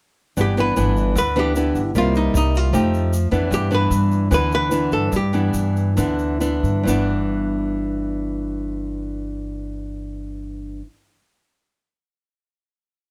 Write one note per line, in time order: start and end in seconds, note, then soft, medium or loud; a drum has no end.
0.37 0.74 G1 medium
0.37 1.14 G2 medium
0.37 0.54 E3 soft
0.37 0.54 B3 medium
0.37 0.54 D4 medium
0.37 0.59 G4 medium
0.37 shaker medium
0.57 0.74 E3 soft
0.57 0.74 B3 medium
0.57 0.74 D4 soft
0.57 1.17 B4 medium
0.57 shaker soft
0.76 1.13 G1 medium
0.76 1.15 E3 medium
0.76 1.16 B3 medium
0.76 1.16 D4 medium
0.76 shaker medium
0.97 shaker soft
1.15 1.71 D2 medium
1.15 1.92 D3 soft
1.15 1.37 B4 medium
1.15 shaker medium
1.36 1.52 E3 medium
1.36 1.52 B3 medium
1.36 1.52 D4 medium
1.36 1.92 G4 medium
1.36 shaker soft
1.56 1.81 E3 soft
1.56 1.81 B3 medium
1.56 1.81 D4 soft
1.56 shaker medium
1.75 1.93 G1 medium
1.75 shaker soft
1.95 2.31 C2 medium
1.95 2.71 C3 soft
1.95 2.70 G3 soft
1.95 2.70 A#3 soft
1.95 2.71 D#4 medium
1.95 2.16 F4 medium
1.95 shaker medium
2.15 2.34 D#4 medium
2.15 shaker soft
2.34 2.70 C2 medium
2.34 2.57 D#4 medium
2.34 shaker medium
2.55 3.34 F4 medium
2.55 shaker soft
2.73 3.28 F2 loud
2.73 3.31 F3 soft
2.73 3.12 A3 medium
2.73 3.12 D#4 soft
2.73 3.12 G4 medium
2.73 shaker medium
2.94 shaker soft
3.13 shaker medium
3.31 3.50 F2 medium
3.31 3.68 E3 medium
3.31 3.68 B3 medium
3.31 3.68 D4 medium
3.31 shaker soft
3.51 4.28 G2 medium
3.51 3.88 G2 medium
3.51 3.73 G4 medium
3.51 shaker medium
3.71 4.27 E3 soft
3.71 4.27 B3 medium
3.71 4.28 D4 medium
3.71 4.33 B4 medium
3.71 shaker soft
3.91 4.28 G2 medium
3.91 shaker medium
4.11 shaker soft
4.31 4.88 D2 medium
4.31 5.10 D3 medium
4.31 4.68 E3 medium
4.31 4.68 B3 soft
4.31 4.68 D4 medium
4.31 4.53 B4 medium
4.31 shaker medium
4.52 4.91 B4 loud
4.52 shaker soft
4.71 5.12 E3 soft
4.71 5.12 B3 soft
4.71 5.12 D4 medium
4.71 shaker medium
4.92 5.11 G2 medium
4.92 5.13 A4 medium
4.92 shaker soft
5.12 5.94 G2 soft
5.12 5.51 G2 medium
5.12 shaker medium
5.16 6.39 G4 medium
5.33 5.93 E3 medium
5.33 5.94 B3 medium
5.33 5.94 D4 medium
5.33 shaker soft
5.54 5.94 G2 medium
5.54 shaker medium
5.77 shaker soft
5.97 6.59 D2 medium
5.97 6.84 D3 soft
5.97 6.37 E3 medium
5.97 6.38 B3 soft
5.97 6.38 D4 medium
5.97 shaker medium
6.19 shaker soft
6.40 6.84 E3 soft
6.40 6.84 B3 soft
6.40 6.85 D4 medium
6.40 shaker medium
6.63 6.85 G2 medium
6.63 shaker soft
6.83 10.80 G1 medium
6.83 10.81 G2 soft
6.83 10.83 E3 medium
6.83 10.85 B3 medium
6.88 10.86 D4 medium
6.88 shaker medium